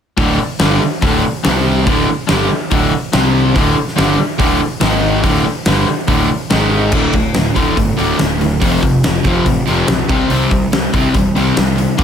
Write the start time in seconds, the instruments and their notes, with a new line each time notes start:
0.17 picked electric bass D1, overdriven electric guitar D2 A2 D3, kick, open hi-hat
0.39 muted overdriven electric guitar stroke, muted picked electric bass stroke, muted distorted electric guitar stroke
0.59 picked electric bass G1, overdriven electric guitar G2 D3 G3, snare, open hi-hat
0.81 muted overdriven electric guitar stroke, muted picked electric bass stroke, muted distorted electric guitar stroke
1.01 picked electric bass D1, overdriven electric guitar D2 A2 D3, kick, open hi-hat
1.43 picked electric bass C2, overdriven electric guitar C3 G3 C4, snare, open hi-hat
1.86 picked electric bass D1, overdriven electric guitar D2 A2 D3, kick, open hi-hat
2.07 muted overdriven electric guitar stroke, muted picked electric bass stroke
2.11 muted distorted electric guitar stroke
2.27 picked electric bass G1, overdriven electric guitar G2 D3 G3, snare, open hi-hat
2.49 muted overdriven electric guitar stroke, muted distorted electric guitar stroke, muted picked electric bass stroke
2.71 picked electric bass D1, overdriven electric guitar D2 A2 D3, kick, open hi-hat
3.12 picked electric bass C2, overdriven electric guitar C3 G3 C4, snare, open hi-hat
3.55 picked electric bass D1, overdriven electric guitar D2 A2 D3, kick, open hi-hat
3.75 muted distorted electric guitar stroke, muted overdriven electric guitar stroke, muted picked electric bass stroke
3.88 snare
3.96 picked electric bass G1, overdriven electric guitar G2 D3 G3, snare, open hi-hat
4.18 muted overdriven electric guitar stroke, muted distorted electric guitar stroke, muted picked electric bass stroke
4.39 picked electric bass D1, overdriven electric guitar D2 A2 D3, kick, open hi-hat
4.80 picked electric bass G#1, overdriven electric guitar G#2 D#3 G#3, snare, open hi-hat
5.23 picked electric bass D1, overdriven electric guitar D2 A2 D3, kick, open hi-hat
5.35 snare
5.45 muted distorted electric guitar stroke, muted picked electric bass stroke, muted overdriven electric guitar stroke
5.66 picked electric bass G1, overdriven electric guitar G2 D3 G3, snare, open hi-hat
5.87 muted distorted electric guitar stroke, muted picked electric bass stroke, muted overdriven electric guitar stroke
6.07 picked electric bass D1, overdriven electric guitar D2 A2 D3, kick, open hi-hat
6.50 picked electric bass G#1, overdriven electric guitar G#2 D#3 G#3, snare, open hi-hat
6.92 picked electric bass D1, overdriven electric guitar D2 A2 D3, kick, crash
7.13 picked electric bass D1, overdriven electric guitar D2 A2, kick, open hi-hat
7.34 picked electric bass D1, overdriven electric guitar D2 A2, snare, open hi-hat
7.55 picked electric bass D1, overdriven electric guitar D2 A2 D3, kick, open hi-hat
7.76 picked electric bass G1, overdriven electric guitar D2 A2, kick, open hi-hat
7.97 picked electric bass D1, overdriven electric guitar D2 A2 D3, open hi-hat
8.19 picked electric bass D1, overdriven electric guitar D2 A2, snare, open hi-hat
8.41 overdriven electric guitar D2 A2, open hi-hat
8.62 picked electric bass F1, overdriven electric guitar F2 C3 F3, kick, open hi-hat
8.83 picked electric bass F1, overdriven electric guitar F2 C3, kick, open hi-hat
9.04 picked electric bass F1, overdriven electric guitar F2 C3, snare, open hi-hat
9.25 picked electric bass F1, overdriven electric guitar F2 C3 F3, kick, open hi-hat
9.46 picked electric bass A1, overdriven electric guitar F2 C3, kick, open hi-hat
9.67 picked electric bass F1, overdriven electric guitar F2 C3 F3, open hi-hat
9.88 picked electric bass B1, overdriven electric guitar F2 C3, snare, open hi-hat
10.09 picked electric bass C2, overdriven electric guitar C3 G3 C4, kick, open hi-hat
10.30 picked electric bass C2, overdriven electric guitar C3 G3 C4, open hi-hat
10.51 picked electric bass C2, overdriven electric guitar C3 G3, kick, open hi-hat
10.73 picked electric bass C2, overdriven electric guitar C3 G3, snare, open hi-hat
10.93 picked electric bass C2, overdriven electric guitar C3 G3 C4, kick, open hi-hat
11.14 picked electric bass E1, overdriven electric guitar C3 G3, kick, open hi-hat
11.35 picked electric bass C2, overdriven electric guitar C3 G3 C4, open hi-hat
11.55 picked electric bass C2, overdriven electric guitar C3 G3, snare, open hi-hat
11.76 overdriven electric guitar C3 G3, open hi-hat
11.97 picked electric bass G1, overdriven electric guitar G2 D3 G3, kick, open hi-hat